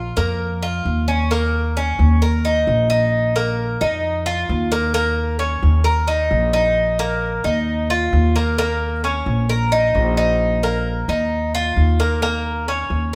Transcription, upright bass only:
0.00 0.11 A#1 loud
0.17 0.82 F2 medium
0.85 1.93 D#2 medium
1.99 2.63 D#2 medium
2.67 3.75 A#1 loud
3.81 4.45 F2 medium
4.49 5.57 D#2 loud
5.63 6.27 D#2 medium
6.31 7.38 A#1 medium
7.44 8.09 D#2 medium
8.13 9.20 D#2 loud
9.26 9.91 A#1 medium
9.95 11.02 A#1 loud
11.08 11.73 D#2 medium
11.76 12.84 D#2 medium
12.90 13.15 D#2 medium

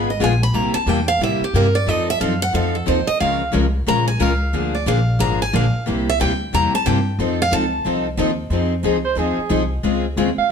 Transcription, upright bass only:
0.00 0.20 G#1 medium
0.20 0.53 A#1 medium
0.54 0.74 C2 medium
0.75 muted upright bass stroke soft
0.86 1.19 E2 loud
1.20 1.40 A2 medium
1.41 muted upright bass stroke soft
1.54 1.86 G2 medium
1.87 2.20 F2 medium
2.20 2.53 F#2 medium
2.54 2.86 F2 medium
2.88 3.07 D#2 medium
3.08 muted upright bass stroke soft
3.21 3.53 C#2 medium
3.54 3.86 C2 medium
3.87 4.19 A#1 medium
4.20 4.52 C#2 medium
4.53 4.86 D2 medium
4.86 5.19 A#1 medium
5.20 5.52 G#1 medium
5.53 5.72 A#1 medium
5.74 muted upright bass stroke soft
5.87 6.19 C2 medium
6.21 6.52 D2 loud
6.54 6.72 E2 medium
6.74 muted upright bass stroke soft
6.87 7.18 G2 medium
7.19 7.51 F2 loud
7.52 7.84 C#2 loud
7.85 8.17 C2 medium
8.17 8.49 D#2 loud
8.50 8.83 F2 medium
8.83 9.15 C#2 medium
9.16 9.36 D#2 medium
9.38 muted upright bass stroke soft
9.50 9.83 C2 loud
9.84 10.16 C#2 medium
10.17 10.36 D#2 medium
10.37 muted upright bass stroke soft

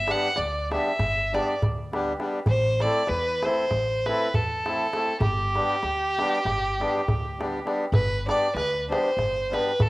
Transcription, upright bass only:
0.00 0.11 G1 medium
0.38 0.75 D2 medium
0.99 1.37 G1 medium
1.62 2.13 D2 medium
2.47 2.85 A1 loud
3.09 3.47 E2 medium
3.72 4.10 A1 medium
4.34 4.86 E2 medium
5.20 5.58 G1 medium
5.83 6.20 D2 medium
6.45 6.83 G1 medium
7.08 7.59 D2 medium
7.92 8.30 G1 medium
8.55 8.92 D2 medium
9.17 9.54 G1 medium
9.79 9.89 D2 medium

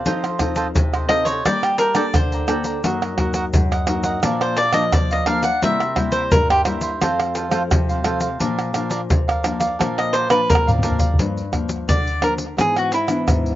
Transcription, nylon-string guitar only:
0.06 0.72 F3 medium
0.06 0.26 C4 medium
0.06 0.26 D#4 medium
0.06 0.27 A4 medium
0.39 1.04 C4 medium
0.39 1.04 D#4 medium
0.39 1.04 A4 medium
0.75 1.41 C3 medium
1.08 1.30 C4 medium
1.08 1.30 D#4 medium
1.08 1.30 A4 medium
1.45 2.11 G3 medium
1.45 1.91 A#3 medium
1.45 1.92 D4 medium
1.95 2.42 A#3 medium
1.95 2.43 D4 medium
1.95 2.43 A4 medium
2.14 2.80 D3 medium
2.47 2.80 A#3 medium
2.47 2.80 D4 medium
2.47 2.81 A4 medium
2.84 3.50 F#2 medium
2.84 3.13 F#3 medium
2.84 3.13 A#3 soft
2.84 3.13 D#4 medium
3.17 3.63 F#3 medium
3.17 3.63 A#3 medium
3.17 3.63 D#4 medium
3.54 4.19 F#2 medium
3.87 4.17 F#3 medium
3.87 4.17 A#3 medium
3.87 4.17 D#4 medium
4.22 4.89 A#2 medium
4.22 4.55 F3 medium
4.22 4.56 A#3 medium
4.22 4.56 D4 medium
4.73 4.91 F3 medium
4.73 5.21 A#3 medium
4.73 5.21 D4 medium
4.92 5.25 F3 medium
5.26 5.49 F3 medium
5.26 5.49 A#3 medium
5.26 5.49 D4 medium
5.62 6.28 C3 medium
5.62 5.82 G3 medium
5.62 5.83 A#3 medium
5.62 5.83 E4 medium
5.95 6.41 G3 medium
5.95 6.41 A#3 medium
5.95 6.41 E4 medium
6.32 6.98 G2 medium
6.66 6.95 G3 medium
6.66 6.95 A#3 medium
6.66 6.96 E4 medium
7.01 7.67 F2 medium
7.01 7.48 F3 medium
7.01 7.48 A3 medium
7.01 7.48 C4 medium
7.51 7.99 F3 medium
7.51 7.99 A3 medium
7.51 7.99 C4 medium
7.71 8.37 C3 medium
8.04 8.27 F3 medium
8.04 8.27 A3 medium
8.04 8.28 C4 medium
8.41 9.07 A#2 medium
8.41 8.70 F3 medium
8.41 8.70 A#3 medium
8.41 8.70 D4 medium
8.74 9.20 F3 medium
8.74 9.20 A#3 medium
8.74 9.20 D4 medium
9.10 9.76 F2 medium
9.44 9.65 F3 medium
9.44 9.65 A#3 medium
9.44 9.65 D4 medium
9.79 10.45 A#2 medium
9.79 10.26 F3 medium
9.79 10.26 A#3 medium
9.79 10.26 D4 medium
10.29 10.77 F3 medium
10.29 10.77 A#3 medium
10.29 10.78 D4 medium
10.50 11.16 F2 medium
10.83 11.06 F3 medium
10.83 11.06 A#3 medium
10.83 11.06 D4 medium
11.19 11.85 G2 medium
11.19 11.39 F3 soft
11.19 11.40 A#3 medium
11.19 11.40 D4 medium
11.52 11.98 F3 medium
11.52 11.98 A#3 medium
11.52 11.98 D4 medium
11.88 12.54 D3 medium
12.21 12.43 F3 medium
12.21 12.43 A#3 soft
12.21 12.43 D4 medium
12.57 13.24 G#2 medium
12.57 12.90 E3 medium
12.57 12.91 B3 medium
12.57 12.91 D4 medium
13.08 13.55 E3 medium
13.08 13.55 B3 medium
13.08 13.55 D4 medium
13.28 13.55 G#2 medium

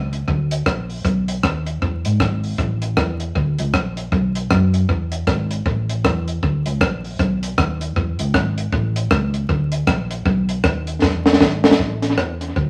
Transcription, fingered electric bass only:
0.00 0.22 C#2 medium
0.28 0.61 D2 medium
0.66 0.99 A#1 medium
1.05 1.38 B1 loud
1.44 1.76 D#2 medium
1.82 2.02 E2 loud
2.06 2.18 G#2 medium
2.20 2.53 G#1 loud
2.59 2.97 A1 loud
2.97 3.30 E2 medium
3.36 3.56 D2 loud
3.60 3.72 C#2 loud
3.74 4.06 A#1 loud
4.12 4.45 B1 loud
4.51 4.83 F#2 medium
4.89 5.22 E2 loud
5.27 5.60 G#1 loud
5.66 6.05 A1 loud
6.05 6.37 E2 medium
6.43 6.63 D2 medium
6.66 6.79 C#2 medium
6.81 7.14 A#1 medium
7.20 7.52 B1 loud
7.58 7.90 D#2 loud
7.96 8.16 E2 loud
8.19 8.32 C#2 medium
8.34 8.67 G#1 medium
8.73 9.05 A1 loud
9.11 9.44 C#2 loud
9.49 9.82 D2 loud
9.87 10.20 A#1 loud
10.26 10.58 B1 loud
10.64 10.97 D#2 medium
11.03 11.35 E2 loud
11.41 11.73 G#1 loud
11.79 12.18 A1 loud
12.18 12.50 E2 medium
12.57 12.70 D2 medium

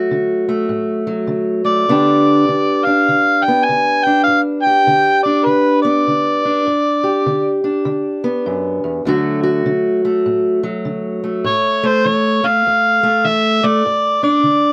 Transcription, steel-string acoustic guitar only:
0.00 1.06 F#3 medium
0.00 0.47 A3 medium
0.00 1.88 F#4 medium
0.11 0.66 D3 medium
0.49 1.63 A3 medium
0.69 1.25 A2 medium
1.07 1.89 F#3 medium
1.27 1.84 D3 medium
1.65 1.88 A3 soft
1.88 2.44 G2 medium
1.88 2.47 D3 medium
1.88 3.48 B3 medium
1.88 2.86 D4 medium
1.88 4.66 G4 medium
2.48 3.04 D3 medium
2.87 4.06 D4 medium
3.08 3.64 D3 medium
3.48 5.84 B3 medium
3.69 4.24 D3 medium
4.07 5.25 D4 soft
4.27 4.83 G2 medium
4.67 6.65 G4 medium
4.87 5.43 D3 medium
5.26 6.45 D4 medium
5.46 6.02 D3 medium
5.85 6.64 B3 medium
6.08 6.63 D3 medium
6.45 7.63 D4 medium
6.66 7.22 G2 medium
7.04 9.03 G4 medium
7.26 7.82 D3 medium
7.64 9.03 D4 medium
7.85 8.41 D3 medium
8.24 9.03 B3 medium
8.46 8.83 F#2 medium
8.84 9.05 E2 medium
9.05 9.61 D2 medium
9.05 9.65 D3 medium
9.05 10.62 F#3 medium
9.05 10.04 A3 medium
9.05 9.42 F#4 medium
9.43 11.42 F#4 medium
9.66 10.21 D3 medium
10.05 11.22 A3 medium
10.26 10.81 A2 medium
10.63 11.45 F#3 medium
10.85 11.40 D3 medium
11.24 11.82 A3 medium
11.44 12.00 A2 medium
11.83 12.42 A3 medium
12.05 12.60 E3 medium
12.44 13.02 A3 medium
12.67 13.20 E2 medium
13.03 13.62 A3 medium
13.25 13.79 E3 medium
13.64 13.82 A3 medium
13.85 14.39 G2 medium
14.23 14.73 D4 medium
14.43 14.73 D3 medium

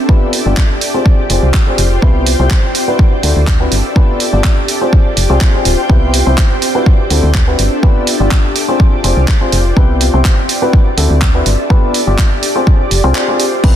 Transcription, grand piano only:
0.09 0.33 B3 medium
0.09 0.33 D4 medium
0.09 0.33 F4 medium
0.09 0.33 G4 medium
0.09 0.33 B4 medium
0.46 0.60 B3 medium
0.46 0.60 D4 medium
0.46 0.60 F4 medium
0.46 0.60 G4 medium
0.46 0.60 D5 medium
0.94 1.18 C4 medium
0.94 1.18 D4 medium
0.94 1.18 F4 medium
0.94 1.18 G#4 medium
0.94 1.18 C5 medium
1.30 1.45 C4 medium
1.30 1.45 D4 medium
1.30 1.45 F4 medium
1.30 1.45 G#4 medium
1.30 1.45 C5 medium
1.67 1.81 C4 medium
1.67 1.81 D4 medium
1.67 1.81 F4 medium
1.67 1.81 G#4 medium
1.67 1.81 C5 medium
2.02 2.26 B3 medium
2.02 2.26 C4 medium
2.02 2.26 E4 medium
2.02 2.26 G4 medium
2.02 2.26 B4 loud
2.39 2.54 B3 medium
2.39 2.54 C4 medium
2.39 2.54 E4 medium
2.39 2.54 G4 medium
2.39 2.54 C5 medium
2.88 3.12 C4 medium
2.88 3.12 D4 medium
2.88 3.12 E4 medium
2.88 3.12 F#4 medium
2.88 3.12 B4 medium
3.23 3.39 C4 medium
3.23 3.39 D4 medium
3.23 3.39 E4 medium
3.23 3.39 F#4 medium
3.23 3.39 A4 medium
3.60 3.70 C4 medium
3.60 3.70 D4 medium
3.60 3.70 E4 medium
3.60 3.70 F#4 medium
3.60 3.70 B4 medium
3.96 4.20 B3 medium
3.96 4.20 D4 medium
3.96 4.20 F4 medium
3.96 4.20 G4 medium
3.96 4.20 B4 medium
4.33 4.47 B3 medium
4.33 4.47 D4 medium
4.33 4.47 F4 medium
4.33 4.47 G4 medium
4.33 4.47 D5 medium
4.81 5.05 C4 medium
4.81 5.05 D4 medium
4.81 5.05 F4 medium
4.81 5.05 G#4 medium
4.81 5.05 C5 medium
5.30 5.50 C4 medium
5.30 5.50 D4 medium
5.30 5.50 F4 medium
5.30 5.50 G#4 medium
5.30 5.50 C5 loud
5.54 5.68 C4 medium
5.54 5.68 D4 medium
5.54 5.68 F4 medium
5.54 5.68 G#4 medium
5.54 5.68 C5 medium
5.89 6.13 B3 medium
5.89 6.13 C4 medium
5.89 6.13 E4 medium
5.89 6.13 G4 medium
5.89 6.13 B4 loud
6.26 6.41 B3 medium
6.26 6.41 C4 medium
6.26 6.41 E4 medium
6.26 6.41 G4 medium
6.26 6.41 C5 medium
6.75 6.99 C4 medium
6.75 6.99 D4 medium
6.75 6.99 E4 medium
6.75 6.99 F#4 medium
6.75 6.99 B4 medium
7.10 7.26 C4 medium
7.10 7.26 D4 medium
7.10 7.26 E4 medium
7.10 7.26 F#4 medium
7.10 7.26 A4 medium
7.47 7.57 C4 medium
7.47 7.58 D4 medium
7.47 7.58 E4 medium
7.47 7.57 F#4 medium
7.47 7.58 B4 medium
7.83 8.07 B3 medium
7.83 8.07 D4 medium
7.83 8.07 F4 medium
7.83 8.07 G4 medium
7.83 8.07 B4 loud
8.20 8.35 B3 medium
8.20 8.35 D4 medium
8.20 8.34 F4 medium
8.20 8.35 G4 medium
8.20 8.35 D5 medium
8.68 8.92 C4 medium
8.68 8.92 D4 medium
8.68 8.92 F4 medium
8.68 8.92 G#4 medium
8.68 8.92 C5 medium
9.04 9.20 C4 medium
9.04 9.20 D4 medium
9.04 9.20 F4 medium
9.04 9.20 G#4 medium
9.04 9.20 C5 medium
9.41 9.55 C4 medium
9.41 9.55 D4 medium
9.41 9.55 F4 medium
9.41 9.55 G#4 medium
9.41 9.55 C5 medium
9.77 10.01 B3 medium
9.77 10.01 C4 medium
9.77 10.01 E4 medium
9.77 10.01 G4 medium
9.77 10.01 B4 loud
10.14 10.28 B3 medium
10.14 10.28 C4 medium
10.14 10.28 E4 medium
10.14 10.28 G4 medium
10.14 10.28 C5 medium
10.62 10.86 C4 medium
10.62 10.86 D4 medium
10.62 10.86 E4 medium
10.62 10.86 F#4 medium
10.62 10.86 B4 medium
10.98 11.13 C4 medium
10.98 11.13 D4 medium
10.98 11.13 E4 medium
10.98 11.13 F#4 medium
10.98 11.13 A4 medium
11.35 11.45 C4 medium
11.35 11.45 D4 medium
11.35 11.45 E4 medium
11.35 11.45 F#4 medium
11.35 11.45 B4 medium
11.70 11.94 B3 medium
11.70 11.94 D4 medium
11.70 11.94 F4 medium
11.70 11.94 G4 medium
11.70 11.94 B4 loud
12.07 12.22 B3 medium
12.07 12.22 D4 medium
12.07 12.22 F4 medium
12.07 12.22 G4 medium
12.07 12.22 D5 medium
12.55 12.80 C4 medium
12.55 12.80 D4 medium
12.55 12.80 F4 medium
12.55 12.80 G#4 medium
12.55 12.80 C5 medium
13.04 13.24 C4 loud
13.04 13.24 D4 medium
13.04 13.24 F4 medium
13.04 13.24 G#4 medium
13.04 13.24 C5 loud
13.28 13.43 C4 medium
13.28 13.43 D4 medium
13.28 13.43 F4 medium
13.28 13.43 G#4 medium
13.28 13.43 C5 loud
13.64 13.76 B3 medium
13.64 13.76 C4 medium
13.64 13.76 E4 medium
13.64 13.76 G4 medium
13.64 13.76 B4 medium

